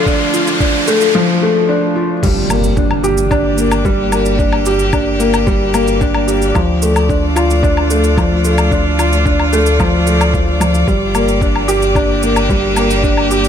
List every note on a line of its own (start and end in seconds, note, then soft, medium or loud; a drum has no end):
0.00 1.14 D3 medium
0.00 1.15 F3 medium
0.00 0.88 A3 medium
0.00 1.14 A3 medium
0.00 0.07 D4 loud
0.00 0.34 F4 medium
0.00 1.14 F4 medium
0.00 1.14 D5 medium
0.00 riser medium
0.06 0.32 D4 medium
0.06 kick loud
0.06 shaker soft
0.34 0.49 F4 medium
0.34 shaker medium
0.47 shaker soft
0.60 0.86 D4 medium
0.60 kick loud
0.60 shaker soft
0.88 1.03 A3 loud
0.88 shaker medium
1.01 shaker soft
1.15 1.40 F3 loud
1.43 1.68 A3 loud
1.69 1.94 D4 medium
1.96 2.11 F4 medium
2.23 6.53 G1 medium
2.23 2.49 G3 medium
2.23 kick loud
2.23 crash medium
2.23 impact medium
2.23 shaker soft
2.50 2.65 A#3 medium
2.50 low woodblock medium
2.50 shaker medium
2.64 shaker soft
2.72 6.56 A#3 medium
2.77 3.02 D4 medium
2.77 kick loud
2.77 shaker soft
2.91 low woodblock medium
3.04 3.19 G4 medium
3.04 shaker medium
3.18 shaker soft
3.31 3.57 D4 loud
3.31 7.64 G4 medium
3.31 13.48 D5 medium
3.31 kick loud
3.31 low woodblock medium
3.31 shaker soft
3.57 3.83 A#3 medium
3.57 shaker medium
3.72 low woodblock medium
3.72 shaker soft
3.85 4.11 G3 loud
3.85 kick loud
3.85 shaker soft
4.12 4.27 A#3 medium
4.12 low woodblock medium
4.12 shaker medium
4.26 shaker soft
4.39 4.65 D4 medium
4.39 kick loud
4.39 shaker soft
4.53 low woodblock medium
4.66 4.82 G4 medium
4.66 shaker medium
4.79 shaker soft
4.93 5.19 D4 medium
4.93 kick loud
4.93 low woodblock medium
4.93 shaker soft
5.20 5.35 A#3 loud
5.20 shaker medium
5.34 low woodblock medium
5.34 shaker soft
5.47 5.73 G3 loud
5.47 kick loud
5.47 shaker soft
5.74 6.00 A#3 loud
5.74 low woodblock medium
5.74 shaker medium
5.88 shaker soft
6.01 6.27 D4 medium
6.01 kick loud
6.01 shaker soft
6.14 low woodblock medium
6.28 6.43 G4 medium
6.28 shaker medium
6.42 shaker soft
6.55 10.85 D2 medium
6.55 6.81 F3 medium
6.55 kick loud
6.55 low woodblock medium
6.55 shaker soft
6.66 10.88 A3 medium
6.82 6.98 A3 medium
6.82 shaker medium
6.96 low woodblock medium
6.96 shaker soft
7.09 7.35 D4 medium
7.09 kick loud
7.09 shaker soft
7.25 12.28 F4 medium
7.36 7.51 F4 loud
7.36 low woodblock medium
7.36 shaker medium
7.50 shaker soft
7.63 7.89 D4 loud
7.63 kick loud
7.63 shaker soft
7.77 low woodblock medium
7.90 8.16 A3 medium
7.90 shaker medium
8.04 shaker soft
8.17 8.43 F3 medium
8.17 kick loud
8.17 low woodblock medium
8.17 shaker soft
8.44 8.60 A3 medium
8.44 shaker medium
8.58 low woodblock medium
8.58 shaker soft
8.71 8.97 D4 medium
8.71 kick loud
8.71 shaker soft
8.98 9.14 F4 medium
8.98 low woodblock medium
8.98 shaker medium
9.13 shaker soft
9.25 9.51 D4 medium
9.25 kick loud
9.25 shaker soft
9.40 low woodblock medium
9.53 9.68 A3 loud
9.53 shaker medium
9.66 shaker soft
9.80 10.05 F3 loud
9.80 kick loud
9.80 low woodblock medium
9.80 shaker soft
10.07 10.32 A3 medium
10.07 shaker medium
10.21 low woodblock medium
10.21 shaker soft
10.34 10.59 F3 medium
10.34 kick loud
10.34 shaker soft
10.60 10.86 F3 medium
10.60 low woodblock medium
10.60 shaker medium
10.75 shaker soft
10.88 13.48 G1 medium
10.88 11.13 G3 medium
10.88 kick loud
10.88 shaker soft
11.07 13.48 G4 medium
11.15 11.30 A#3 medium
11.15 low woodblock medium
11.15 shaker medium
11.28 shaker soft
11.41 13.48 A#3 medium
11.41 11.67 D4 medium
11.41 kick loud
11.41 shaker soft
11.56 low woodblock medium
11.68 11.84 G4 loud
11.68 shaker medium
11.82 shaker soft
11.95 12.21 D4 loud
11.95 kick loud
11.95 low woodblock medium
11.95 shaker soft
12.22 12.48 A#3 medium
12.22 shaker medium
12.36 low woodblock medium
12.36 shaker soft
12.50 12.76 G3 medium
12.50 kick loud
12.50 shaker soft
12.76 12.92 A#3 medium
12.76 low woodblock medium
12.76 shaker medium
12.91 shaker soft
13.04 13.30 D4 medium
13.04 kick loud
13.04 shaker soft
13.17 low woodblock medium
13.31 13.46 G4 medium
13.31 shaker medium
13.44 shaker soft